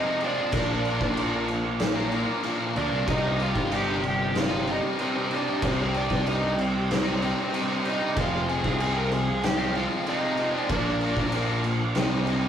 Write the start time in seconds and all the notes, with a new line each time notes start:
Already playing: F2 C3 D#4 D#5
0.04 F3 G#3 C4 F4
0.20 F3 G#3 C4 F4, crash
0.24 D4 D5
0.37 F3 G#3 C4 F4
0.51 A#1 A#2 F3 A#3 D4 F4 A#4, kick, crash
0.85 A#3 D4 F4 A#4, crash
1.00 A#1 A#3 D4 F4 A#4, kick
1.16 A#2 F3 A#3 D4 F4 A#4, crash
1.32 A#3 D4 F4 A#4
1.48 muted overdriven electric guitar stroke, crash
1.64 A#3 D4 F4 A#4
1.80 snare, crash
1.96 A#3 D4 F4 A#4
2.11 A#3 D4 F4 A#4, crash
2.42 A#2 F3 A#3 D4 F4 A#4, crash
2.58 A#3 D4 F4 A#4
2.74 D2 A#3 D4 F4 A#4 D5, crash
2.90 C2 A#3 D4 F4 A#4
3.05 C2 G2 C3 G3 D#4 G4 C5 G5 C6, kick, crash
3.10 D#4 D#5
3.37 G2 C3 G3 D#4, crash
3.42 F4 F5
3.53 G1 C3 G3 D#4, kick
3.69 C2 G2 C3 G3 D#4, crash
3.75 G4 G5
3.85 C3 G3 D#4
4.03 muted overdriven electric guitar stroke, crash
4.08 G4 G5
4.18 G3 D#4
4.23 C3
4.35 F5, snare, crash
4.40 F4
4.48 C3 G3 D#4
4.65 G2 C3 G3 D#4, crash
4.71 D#4 D#5
4.97 C2 G2 C3 G3 D#4, crash
5.01 C4 C5
5.13 C3 G3 D#4 C5
5.19 C4
5.29 G2 C3 G3 D#4, crash
5.34 D4 D5
5.45 C3 G3 D#4
5.61 C2 G2 C3 G3 D#4 D6, kick, crash
5.68 C4 C5
5.82 C4 C5
5.92 G2 C3 G3 D#4, crash
5.97 D4 D5
6.08 C2 C3 G3 D#4, kick, snare
6.24 C2 G2 C3 G3 D#4, crash
6.29 D#4 D#5
6.40 C3 G3 D#4
6.56 muted overdriven electric guitar stroke, crash
6.60 C4 C5
6.72 C3 G3 D#4
6.91 snare, crash
7.03 C3 G3 D#4
7.20 G2 C3 G3 D#4, crash
7.51 C2 G2 C3 G3 D#4, crash
7.67 C3 G3 D#4
7.82 G2 C3 G3 D#4, crash
7.88 D#4 D#5
7.99 C3 G3 D#4
8.14 F1 F2 C3 F3 G#3 C4 F4 F5 C6, kick, crash
8.20 F4 F5
8.46 F3 G#3 C4 F4 G#5, crash
8.50 G#4
8.61 C2 F3 G#3 C4 F4, kick
8.77 F2 C3 F3 G#3 C4 F4 G#5, crash
8.82 G#4
8.93 F3 G#3 C4 F4
8.97 A#4 A#5
9.10 G#4 G#5, muted overdriven electric guitar stroke, crash
9.27 F3 G#3 C4 F4
9.43 G4 G5, snare, crash
9.57 F3 G#3 C4 F4
9.74 F3 G#3 C4 F4 F5, crash
10.05 F2 C3 F3 G#3 C4 F4 D#5, crash
10.10 D#4
10.23 F3 G#3 C4 F4
10.37 F3 G#3 C4, crash
10.42 F4
10.54 F3 G#3 C4 F4 D5
10.68 A#1 A#2 F3 A#3 D4 A#4 D5 F5 D6, kick, crash
10.72 D4 F4 A#4 D5
11.01 A#3 D4 F4, crash
11.05 A#4
11.17 A#1 A#3 D4 F4 A#4, kick
11.31 A#2 F3 A#3 D4 F4 A#4, crash
11.49 A#3 D4 F4 A#4
11.64 muted overdriven electric guitar stroke, crash
11.80 A#3 D4 F4 A#4
11.94 C2 G2 C3 C5 D#5 G5 D#6, snare, crash
11.99 G3 D#4
12.11 C3 G3 D#4
12.26 G2 C3 G3 D#4, crash